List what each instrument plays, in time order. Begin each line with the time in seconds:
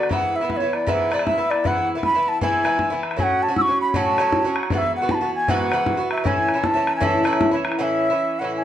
Already playing: bouzouki D3 B3 F#4, flute D5
0.03 bodhran
0.09 bouzouki G#2 E3 B3 E4, flute F#5, bodhran
0.36 flute E5
0.41 bouzouki E3 B3 E4
0.50 flute E5, bodhran
0.57 bouzouki E4, flute C#5
0.62 bouzouki E3 B3
0.73 flute D5, bodhran
0.87 bouzouki G#2 E3 B3 E4, flute E5, bodhran
1.11 bouzouki G#2 E3 B3 E4, flute D5, bodhran
1.19 bodhran
1.27 flute E5, bodhran
1.38 bouzouki E3 B3 E4
1.50 flute D5, bodhran
1.64 bouzouki G#2 E3 B3 E4, flute F#5, bodhran
1.95 bouzouki E3 B3 E4
2.03 flute B5, bodhran
2.15 bouzouki E3 B3 E4
2.28 flute A5
2.41 bouzouki G#2 E3 B3 E4, flute G#5, bodhran
2.64 bouzouki G#2 E3 B3 E4, bodhran
2.79 bodhran
2.90 bouzouki E3 B3 E4
3.03 bodhran
3.11 bodhran
3.17 bouzouki A2 F#3 C#4 F#4, flute G#5, bodhran
3.23 flute F#5
3.43 flute A5
3.48 bouzouki F#3 C#4 F#4
3.56 flute E6, bodhran
3.62 flute C#6
3.67 bouzouki F#3 C#4 F#4
3.81 flute B5
3.89 flute B5
3.94 bouzouki A2 F#3 C#4 F#4, flute A5, bodhran
4.18 bouzouki A2 F#3 C#4 F#4, bodhran
4.32 bodhran
4.44 bouzouki F#3 C#4 F#4
4.56 bodhran
4.63 bodhran
4.70 bouzouki G#2 E3 B3 F#4, flute F#5, bodhran
4.78 flute E5
4.96 flute F#5
5.02 bouzouki E3 B3 F#4
5.09 flute B5, bodhran
5.15 flute A5
5.21 bouzouki E3 B3 F#4
5.35 flute G#5
5.48 bouzouki G#2 E3 B3 F#4, flute F#5, bodhran
5.71 bouzouki G#2 E3 B3 F#4, bodhran
5.86 bodhran
5.97 bouzouki E3 B3 F#4
6.11 flute E5, bodhran
6.18 bodhran
6.24 bouzouki A2 E3 C#4 E4, flute G#5, bodhran
6.49 bodhran
6.54 bouzouki E3 C#4 E4
6.64 flute A5, bodhran
6.74 bouzouki E3 C#4 E4
6.87 bodhran
6.96 flute G#5
7.00 bouzouki A2 E3 C#4 E4, flute A5, bodhran
7.24 bouzouki A2 E3 C#4 E4, bodhran
7.33 bodhran
7.41 bodhran
7.51 bouzouki E3 C#4 E4
7.65 bodhran
7.72 bodhran
7.78 bouzouki A2 E3 C#4 E4, flute F#5
7.83 flute E5
8.10 bouzouki E3 C#4 E4
8.39 bouzouki A2 E3 C#4, flute F#5
8.44 bouzouki E4
8.56 flute G#5